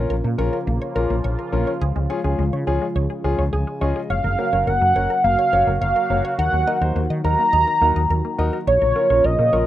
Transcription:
Already playing: analog synth pad C#3 F3 A#3 F4, grand piano C#4 F4 A#4
0.10 fretless electric bass A#1, synth arpeggio sound A#4
0.24 fretless electric bass A#2, synth arpeggio sound A#3
0.38 fretless electric bass A#1, grand piano C#4 F4 A#4, synth arpeggio sound C#5
0.53 synth arpeggio sound A#4
0.67 fretless electric bass A#1, synth arpeggio sound A#3
0.82 synth arpeggio sound C#5
0.95 fretless electric bass A#1, grand piano C#4 F4 A#4, synth arpeggio sound A#4
1.10 fretless electric bass A#1, synth arpeggio sound A#3
1.24 fretless electric bass A#1, synth arpeggio sound C#5
1.39 synth arpeggio sound A#4
1.52 fretless electric bass A#1, synth arpeggio sound A#3, grand piano C#4 F4 A#4
1.67 synth arpeggio sound C#5
1.81 fretless electric bass C#2, analog synth pad C#3 G#3, synth arpeggio sound G#4
1.96 fretless electric bass C#2, synth arpeggio sound G#3
2.10 grand piano C#4 F4 G#4, synth arpeggio sound C#5
2.24 fretless electric bass C#2, grand piano C#4 F4 G#4, synth arpeggio sound G#4
2.39 fretless electric bass C#2, synth arpeggio sound G#3
2.53 fretless electric bass C#3, synth arpeggio sound C#5
2.67 fretless electric bass C#2, grand piano C#4 F4 G#4, synth arpeggio sound G#4
2.82 synth arpeggio sound G#3
2.96 fretless electric bass C#2, synth arpeggio sound C#5
3.10 synth arpeggio sound G#4
3.24 fretless electric bass C#2, synth arpeggio sound G#3, grand piano C#4 F4 G#4
3.39 fretless electric bass C#2, synth arpeggio sound C#5
3.53 fretless electric bass C#2, synth arpeggio sound G#4, grand piano G#5
3.67 synth arpeggio sound G#3
3.81 fretless electric bass C#2, grand piano C#4 F4 G#4 D#5, synth arpeggio sound C#5
3.96 synth arpeggio sound G#4
4.10 fretless electric bass F#1, analog synth pad F#3 A#3 F#4, synth arpeggio sound C#5, soft synth lead F5
4.24 fretless electric bass F#1, synth arpeggio sound A#4
4.38 synth arpeggio sound A#3, grand piano C#4 F#4 A#4
4.53 fretless electric bass F#1, grand piano C#4 F#4 A#4, synth arpeggio sound C#5
4.67 fretless electric bass F#1, synth arpeggio sound A#4, soft synth lead F#5
4.81 fretless electric bass F#2, synth arpeggio sound A#3
4.96 fretless electric bass F#1, grand piano C#4 F#4 A#4, synth arpeggio sound C#5
5.10 synth arpeggio sound A#4
5.24 fretless electric bass F#1, synth arpeggio sound A#3, soft synth lead F5
5.39 synth arpeggio sound C#5
5.53 fretless electric bass F#1, grand piano C#4 F#4 C#5, synth arpeggio sound A#4
5.67 fretless electric bass F#1, synth arpeggio sound A#3
5.81 fretless electric bass F#1, synth arpeggio sound C#5, soft synth lead F5
5.96 synth arpeggio sound A#4
6.10 fretless electric bass F#1, synth arpeggio sound A#3, grand piano C#4 F#4 C#5
6.25 synth arpeggio sound C#5
6.38 fretless electric bass D#2, analog synth pad D#3, synth arpeggio sound A#4, soft synth lead F#5
6.53 fretless electric bass D#2, synth arpeggio sound A#3
6.67 grand piano D#4 F#4 A#4, synth arpeggio sound D#5
6.81 fretless electric bass D#2, grand piano D#4 F#4 C5, synth arpeggio sound A#4
6.96 fretless electric bass D#2, synth arpeggio sound A#3
7.10 fretless electric bass D#3, synth arpeggio sound D#5
7.24 fretless electric bass D#2, grand piano D#4 F#4 A#4, synth arpeggio sound A#4, soft synth lead A#5
7.39 synth arpeggio sound A#3
7.53 fretless electric bass D#2, synth arpeggio sound D#5
7.67 synth arpeggio sound A#4
7.81 fretless electric bass D#2, synth arpeggio sound A#3, grand piano D#4 F#4 A#4
7.96 fretless electric bass D#2, synth arpeggio sound D#5
8.10 fretless electric bass D#2, synth arpeggio sound A#4
8.25 synth arpeggio sound A#3
8.38 fretless electric bass D#2, grand piano D#4 F#4 A#4, synth arpeggio sound D#5
8.53 synth arpeggio sound A#4
8.67 fretless electric bass A#1, analog synth pad C#3 F3 A#3 F4, synth arpeggio sound C#5, soft synth lead C#5
8.82 fretless electric bass A#1, synth arpeggio sound A#4
8.96 synth arpeggio sound A#3, grand piano C#4 F4 A#4
9.10 fretless electric bass A#1, grand piano C#4 F4 A#4, synth arpeggio sound C#5
9.24 fretless electric bass A#1, synth arpeggio sound A#4, soft synth lead D#5
9.39 fretless electric bass A#2, synth arpeggio sound A#3
9.53 fretless electric bass A#1, grand piano C#4 F4 A#4, synth arpeggio sound C#5

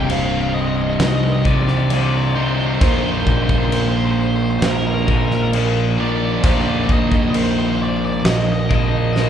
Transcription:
Already playing: fingered electric bass C1, overdriven electric guitar C2 G2 C3, distorted electric guitar C2 G2 C3 G3 D#4, harmonium C3 C4 D#4 G4
0.03 overdriven electric guitar G5
0.09 felt piano C5, overdriven electric guitar F5, crash
0.18 overdriven electric guitar F5
0.25 overdriven electric guitar F5
0.32 overdriven electric guitar F5
0.41 overdriven electric guitar F5
0.49 overdriven electric guitar F5
0.54 overdriven electric guitar D#5
0.61 overdriven electric guitar D#5
0.68 overdriven electric guitar D#5
0.76 overdriven electric guitar D#5
0.82 overdriven electric guitar D#5
0.90 overdriven electric guitar D#5
0.99 fingered electric bass C2, felt piano D#4, overdriven electric guitar D#5, snare, crash
1.08 overdriven electric guitar D#5
1.15 overdriven electric guitar D#5
1.24 overdriven electric guitar D#5
1.32 overdriven electric guitar D#5
1.39 overdriven electric guitar D#5
1.44 overdriven electric guitar C2 G2 C3 D5, kick
1.55 overdriven electric guitar D5
1.61 overdriven electric guitar D5
1.68 overdriven electric guitar D5, snare
1.77 overdriven electric guitar D5
1.86 overdriven electric guitar C2 D5
1.90 overdriven electric guitar G2 C3 D5, felt piano C5, crash
2.01 overdriven electric guitar D5
2.08 overdriven electric guitar D5
2.16 overdriven electric guitar D5
2.24 overdriven electric guitar D5
2.31 overdriven electric guitar D5
2.36 distorted electric guitar C2 G2 C3 G3 D#4, overdriven electric guitar C5
2.42 overdriven electric guitar C5
2.51 overdriven electric guitar C5
2.58 overdriven electric guitar C5
2.66 overdriven electric guitar C5
2.74 overdriven electric guitar C5
2.80 fingered electric bass A#1, overdriven electric guitar A#2 F3 A#3 C5, distorted electric guitar A#2 F3 A#3 D#4 F4, harmonium G#3 A#3 D#4, felt piano C5, kick, crash
2.85 distorted electric guitar A#4
2.89 overdriven electric guitar C5
2.96 overdriven electric guitar C5
3.04 overdriven electric guitar C5
3.12 overdriven electric guitar C5
3.19 overdriven electric guitar C5
3.26 fingered electric bass A#1, overdriven electric guitar C5, kick
3.35 overdriven electric guitar C5
3.42 overdriven electric guitar C5
3.49 overdriven electric guitar C5, kick
3.58 overdriven electric guitar C5
3.65 overdriven electric guitar C5
3.72 felt piano A#4, overdriven electric guitar C5, crash
3.81 overdriven electric guitar C5
3.89 overdriven electric guitar C5
3.97 overdriven electric guitar C5
4.05 overdriven electric guitar C5
4.11 overdriven electric guitar C5
4.21 overdriven electric guitar C5
4.28 overdriven electric guitar C5
4.36 overdriven electric guitar C5
4.42 overdriven electric guitar C5
4.50 overdriven electric guitar C5
4.59 fingered electric bass A#1, overdriven electric guitar A#4 C5, felt piano C5, snare, crash
4.70 overdriven electric guitar A#4
4.78 overdriven electric guitar A#4
4.86 overdriven electric guitar A#4
4.94 overdriven electric guitar A#4
5.03 overdriven electric guitar A#4
5.07 overdriven electric guitar A#2 F3 A#3 A#4, kick
5.18 overdriven electric guitar A#4
5.26 overdriven electric guitar A#4
5.31 overdriven electric guitar A#4, snare
5.42 overdriven electric guitar A#4
5.52 overdriven electric guitar A#2 F3 A#3, felt piano A#4, crash
5.98 distorted electric guitar A#2 F3 A#3 D#4 F4 A#4, overdriven electric guitar D5
6.08 overdriven electric guitar D5
6.16 overdriven electric guitar D5
6.25 overdriven electric guitar D5
6.33 overdriven electric guitar D5
6.42 fingered electric bass A#1, overdriven electric guitar A#2 F3 A#3 D5, distorted electric guitar A#2 F3 A#3 D#4, felt piano C5, kick, crash
6.46 distorted electric guitar F4 A#4
6.54 overdriven electric guitar D5
6.61 overdriven electric guitar D5
6.69 overdriven electric guitar D5
6.76 overdriven electric guitar D5
6.84 overdriven electric guitar D5
6.89 fingered electric bass A#1, overdriven electric guitar D#5, kick
7.00 overdriven electric guitar D#5
7.08 overdriven electric guitar D#5, kick
7.15 overdriven electric guitar D#5
7.23 overdriven electric guitar D#5
7.30 overdriven electric guitar D#5
7.34 felt piano A#4, overdriven electric guitar C5, crash
7.44 overdriven electric guitar C5
7.51 overdriven electric guitar C5
7.59 overdriven electric guitar C5
7.68 overdriven electric guitar C5
7.74 overdriven electric guitar C5
7.83 overdriven electric guitar D5
7.89 overdriven electric guitar D5
7.97 overdriven electric guitar D5
8.05 overdriven electric guitar D5
8.12 overdriven electric guitar D5
8.20 overdriven electric guitar D5
8.25 fingered electric bass A#1, felt piano D#5, overdriven electric guitar D#5, snare, crash
8.36 overdriven electric guitar D#5
8.44 overdriven electric guitar D#5
8.52 overdriven electric guitar D#5
8.59 overdriven electric guitar D#5
8.66 overdriven electric guitar A#3 D#5
8.70 overdriven electric guitar A#2 F3, kick
8.75 overdriven electric guitar D#5
8.83 overdriven electric guitar D#5
8.90 overdriven electric guitar D#5
8.97 overdriven electric guitar D#5
9.05 overdriven electric guitar D#5
9.13 overdriven electric guitar A#2 F3 D#5, snare
9.17 overdriven electric guitar A#3 D#5, felt piano C5

